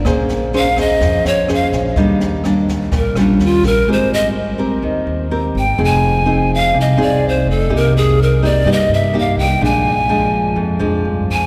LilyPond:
<<
  \new Staff \with { instrumentName = "Pan flute" } { \time 4/4 \key aes \lydian \tempo 4 = 125 r4 f''8 ees''4 des''8 f''8 r8 | r2 bes'8 d'8 f'8 bes'8 | c''8 ees''8 r2 r8 g''8 | aes''4. f''8 ees''8 d''8 c''8 a'8 |
bes'8 aes'8 bes'8 d''8 ees''8 fes''8 f''8 g''8 | aes''2 r4. aes''8 | }
  \new Staff \with { instrumentName = "Nylon-string guitar" } { \time 4/4 \key aes \lydian << { <des' aes' c''>4 <des' aes' c''>8 <des' aes' c''>4. <des' aes' c''>4 | <g bes d'>4 <g bes d'>4 r8 <g des' f'>4. | <c' g' bes'>4 r8 <c' g' bes'>4. <c' g' bes'>8 r8 | <c' ees' aes'>4 <c' ees' aes'>4 r8 <c' ees' aes'>4. |
<bes ees' g'>4 r8 <bes ees' g'>8 <bes ees' g'>4 <bes ees' g'>8 r8 | <f aes d'>8 r8 <f aes d'>4. <f aes d'>4. | } \\ { bes2 f2 | ees2 bes,4 r4 | aes2 ees2 | f2 c2 |
c2 g,2 | bes,2 f,2 | } >> }
  \new Staff \with { instrumentName = "Upright bass" } { \clef bass \time 4/4 \key aes \lydian bes,,2 f,8 f,4 bes,,8 | ees,2 bes,,8 bes,,8 ees,8 bes,,8 | aes,,2 ees,8 ees,4 aes,,8 | f,,2 c,8 c,4 f,,8 |
c,2 g,8 g,4 c,8 | bes,,2 f,8 f,8 g,8 f,8 | }
  \new DrumStaff \with { instrumentName = "Drums" } \drummode { \time 4/4 <bd ss sn>8 sn8 sn8 <bd ss sn>8 <bd sn>8 sn8 <ss sn>8 <bd sn>8 | <bd sn>8 sn8 <ss sn>8 <bd sn>8 <bd sn>8 <ss sn>8 sn8 <bd sn>8 | r4 r4 r4 r4 | r4 r4 r4 r4 |
r4 r4 r4 r4 | r4 r4 r4 r4 | }
>>